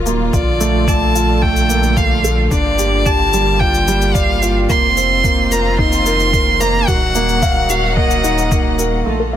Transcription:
0.00 0.31 D#1 medium
0.00 0.31 D#3 medium
0.00 0.31 F#3 medium
0.00 0.06 A#3 medium
0.00 0.35 D#4 medium
0.00 0.34 F4 medium
0.00 4.66 F4 medium
0.00 0.35 A#4 medium
0.06 0.32 A#3 medium
0.06 shaker soft
0.33 2.49 A#1 medium
0.33 4.66 D3 medium
0.33 0.59 F4 medium
0.33 2.49 A4 medium
0.33 0.90 D5 medium
0.33 kick medium
0.33 shaker soft
0.60 0.86 A3 medium
0.60 shaker medium
0.88 1.14 D5 loud
0.88 1.44 A5 medium
0.88 kick medium
0.88 shaker soft
1.15 1.41 F4 medium
1.15 shaker medium
1.42 1.58 A3 medium
1.42 1.99 G5 medium
1.42 kick medium
1.56 shaker soft
1.69 1.95 A#3 medium
1.69 shaker medium
1.83 shaker soft
1.97 2.13 A3 medium
1.97 2.38 F5 medium
1.97 kick loud
1.97 shaker soft
2.24 2.50 A4 medium
2.24 shaker soft
2.51 4.67 G1 medium
2.51 4.67 G3 medium
2.51 9.02 A#3 medium
2.51 2.77 D4 medium
2.51 3.08 D5 medium
2.51 kick medium
2.51 shaker soft
2.79 3.04 G4 medium
2.79 shaker medium
3.06 3.32 G4 medium
3.06 3.62 A5 loud
3.06 kick medium
3.06 shaker soft
3.33 3.59 G3 medium
3.33 shaker medium
3.60 3.86 F4 medium
3.60 4.16 G5 loud
3.60 kick medium
3.74 shaker soft
3.88 4.14 G3 loud
3.88 shaker medium
4.02 shaker soft
4.15 4.41 D5 medium
4.15 4.56 F5 medium
4.15 kick medium
4.15 shaker soft
4.42 4.68 F4 medium
4.42 shaker medium
4.69 6.85 F1 medium
4.69 9.02 D#3 medium
4.69 4.85 A#3 medium
4.69 6.85 C4 medium
4.69 6.85 F4 medium
4.69 5.53 C6 loud
4.69 kick medium
4.69 shaker soft
4.97 5.23 C4 medium
4.97 shaker medium
5.24 5.40 A#3 medium
5.24 kick medium
5.24 shaker soft
5.51 5.77 A#4 medium
5.51 5.78 A#5 medium
5.51 shaker medium
5.79 6.05 D#4 medium
5.79 6.62 C6 loud
5.79 kick loud
5.92 shaker soft
6.06 6.32 A#4 medium
6.06 shaker medium
6.20 shaker soft
6.33 6.59 A#4 medium
6.33 kick medium
6.33 shaker soft
6.60 6.86 A#3 loud
6.60 6.89 A#5 loud
6.60 shaker medium
6.88 9.03 D#1 medium
6.88 9.04 F#3 medium
6.88 7.14 F#4 medium
6.88 9.04 F#5 medium
6.88 7.71 F#5 loud
6.88 kick medium
6.88 shaker soft
7.15 7.41 A#3 medium
7.15 shaker medium
7.29 shaker soft
7.42 7.68 F5 loud
7.42 kick medium
7.42 shaker soft
7.69 7.96 F#4 medium
7.69 7.96 F5 medium
7.69 shaker medium
7.97 8.13 A#3 medium
7.97 8.75 D#5 medium
7.97 kick medium
8.11 shaker soft
8.24 8.50 D#4 medium
8.24 shaker medium
8.38 shaker soft
8.51 8.67 A#3 medium
8.51 kick loud
8.51 shaker soft
8.79 9.05 A#4 medium
8.79 shaker medium
9.06 9.37 A#1 medium
9.06 9.37 D3 medium
9.06 9.22 A3 medium
9.06 9.37 F4 medium
9.06 9.37 A4 medium
9.20 9.33 A#4 medium
9.33 9.37 A#3 medium
9.33 9.37 F5 medium

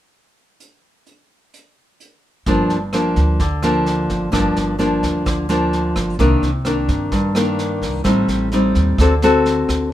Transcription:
0.60 closed hi-hat soft
1.06 closed hi-hat soft
1.54 closed hi-hat soft
2.00 closed hi-hat soft
2.46 2.68 G1 medium
2.46 3.38 G2 soft
2.46 2.76 F3 soft
2.46 2.77 A#3 soft
2.46 2.77 D4 soft
2.46 kick medium
2.46 snare soft
2.69 3.13 G1 medium
2.69 snare soft
2.93 3.39 F3 soft
2.93 3.40 A#3 soft
2.93 3.40 D4 soft
2.93 cross-stick soft
2.93 snare soft
3.16 4.05 D2 medium
3.16 kick soft
3.16 snare soft
3.39 4.31 D3 soft
3.39 kick soft
3.39 snare soft
3.63 4.29 F3 medium
3.63 4.29 A#3 soft
3.63 4.29 D4 medium
3.63 cross-stick soft
3.63 snare soft
3.86 snare soft
4.10 4.31 G1 medium
4.10 kick soft
4.10 snare soft
4.32 4.55 G1 medium
4.32 5.23 G2 soft
4.32 4.75 F3 soft
4.32 4.75 A#3 soft
4.32 4.76 D4 soft
4.32 kick soft
4.32 cross-stick medium
4.32 snare soft
4.56 4.99 G1 medium
4.56 snare soft
4.79 5.45 F3 soft
4.79 5.45 A#3 soft
4.79 5.46 D4 soft
4.79 snare soft
5.03 5.92 D2 medium
5.03 kick soft
5.03 snare soft
5.26 6.17 D3 soft
5.26 kick medium
5.26 cross-stick soft
5.26 snare soft
5.49 6.15 F3 soft
5.49 6.16 A#3 soft
5.49 6.16 D4 medium
5.49 snare soft
5.73 snare soft
5.96 6.18 G1 medium
5.96 kick soft
5.96 cross-stick medium
5.96 snare soft
6.19 6.41 C2 medium
6.19 7.10 C3 soft
6.19 6.49 D#3 soft
6.19 6.50 A#3 soft
6.19 6.50 D4 soft
6.19 kick soft
6.19 snare soft
6.42 6.85 C2 medium
6.42 snare soft
6.65 7.32 D#3 soft
6.65 7.32 A#3 soft
6.65 7.32 D4 soft
6.65 cross-stick soft
6.65 snare soft
6.89 7.78 G2 medium
6.89 kick soft
6.89 snare soft
7.12 8.03 G2 medium
7.12 kick soft
7.12 snare soft
7.35 8.02 D#3 medium
7.35 8.02 A#3 soft
7.35 8.03 D4 medium
7.35 cross-stick medium
7.35 snare soft
7.59 snare soft
7.82 8.04 C2 medium
7.82 kick soft
7.82 snare soft
8.04 8.27 A1 medium
8.04 8.96 A2 soft
8.04 8.48 G3 soft
8.04 8.48 C4 soft
8.04 8.48 D#4 soft
8.04 kick soft
8.04 cross-stick soft
8.04 snare soft
8.28 8.72 A1 medium
8.28 snare soft
8.52 8.97 G3 soft
8.52 8.97 C4 soft
8.52 8.98 D#4 soft
8.52 snare soft
8.75 8.97 D#2 medium
8.75 kick soft
8.75 snare soft
8.98 9.64 D2 medium
8.98 9.90 D3 soft
8.98 9.13 C4 soft
8.98 9.13 F#4 medium
8.98 9.14 A4 medium
8.98 kick medium
8.98 cross-stick soft
8.98 snare soft
9.22 9.89 C4 medium
9.22 9.89 F#4 medium
9.22 9.89 A4 medium
9.22 snare soft
9.46 snare soft
9.69 9.90 D2 medium
9.69 kick soft
9.69 cross-stick soft
9.69 snare soft

